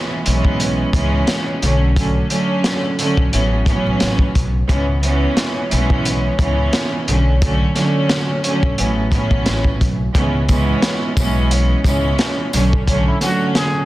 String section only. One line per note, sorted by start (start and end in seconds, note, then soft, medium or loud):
0.00 0.21 E3 loud
0.00 0.21 G#3 medium
0.00 0.21 B3 medium
0.00 0.22 C#4 loud
0.26 0.89 E3 loud
0.26 0.89 G#3 medium
0.26 0.90 B3 medium
0.26 0.90 C#4 loud
0.93 1.57 E3 loud
0.93 1.57 G#3 medium
0.93 1.57 B3 medium
0.93 1.58 C#4 loud
1.63 1.94 D3 medium
1.63 1.94 F#3 medium
1.63 1.95 A3 medium
1.63 1.95 C#4 medium
1.96 2.28 D3 loud
1.96 2.28 F#3 medium
1.96 2.28 A3 medium
1.96 2.28 C#4 loud
2.29 2.93 D3 loud
2.29 2.93 F#3 medium
2.29 2.94 A3 medium
2.29 2.94 C#4 loud
2.98 3.33 D3 loud
2.98 3.31 F#3 medium
2.98 3.33 A3 medium
2.98 3.32 C#4 loud
3.32 3.54 A2 medium
3.32 3.54 E3 medium
3.32 3.54 F#3 medium
3.32 3.54 B3 medium
3.32 3.54 C#4 loud
3.66 4.46 A2 medium
3.66 4.46 E3 medium
3.66 4.46 F#3 medium
3.66 4.47 B3 medium
3.66 4.47 C#4 loud
4.69 5.01 E3 medium
4.69 5.01 G#3 medium
4.69 5.01 B3 medium
4.69 5.01 C#4 loud
5.03 5.66 E3 loud
5.03 5.67 G#3 medium
5.03 5.67 B3 medium
5.03 5.67 C#4 loud
5.72 6.35 E3 loud
5.72 6.35 G#3 medium
5.72 6.35 B3 medium
5.72 6.35 C#4 loud
6.39 7.02 E3 loud
6.39 7.03 G#3 medium
6.39 7.03 B3 medium
6.39 7.03 C#4 loud
7.08 7.40 D3 medium
7.08 7.40 F#3 medium
7.08 7.40 A3 medium
7.08 7.40 C#4 medium
7.41 7.73 D3 loud
7.41 7.73 F#3 medium
7.41 7.73 A3 medium
7.41 7.74 C#4 loud
7.75 8.38 D3 loud
7.75 8.39 F#3 medium
7.75 8.39 A3 medium
7.75 8.39 C#4 loud
8.43 8.78 D3 medium
8.43 8.77 F#3 medium
8.43 8.78 A3 medium
8.43 8.78 C#4 loud
8.77 8.99 A2 medium
8.77 8.99 E3 medium
8.77 9.00 F#3 medium
8.77 9.00 B3 medium
8.77 9.00 C#4 loud
9.12 9.91 A2 medium
9.12 9.92 E3 medium
9.12 9.92 F#3 medium
9.12 9.92 B3 medium
9.12 9.92 C#4 loud
10.14 10.46 E3 medium
10.14 10.46 G#3 medium
10.14 10.47 B3 loud
10.14 10.47 C#4 loud
10.49 11.12 E3 loud
10.49 11.12 G#3 medium
10.49 11.12 B3 medium
10.49 11.13 C#4 loud
11.17 11.80 E3 loud
11.17 11.80 G#3 loud
11.17 11.81 B3 medium
11.17 11.81 C#4 loud
11.84 12.48 E3 loud
11.84 12.48 G#3 medium
11.84 12.48 B3 medium
11.84 12.49 C#4 loud
12.54 12.85 D3 medium
12.54 12.85 F#3 medium
12.54 12.86 A3 medium
12.54 12.86 C#4 medium
12.86 13.18 D3 loud
12.86 13.19 F#3 medium
12.86 13.19 A3 medium
12.86 13.19 C#4 loud
13.20 13.84 D3 loud
13.20 13.84 F#3 medium
13.20 13.85 A3 medium
13.20 13.85 C#4 loud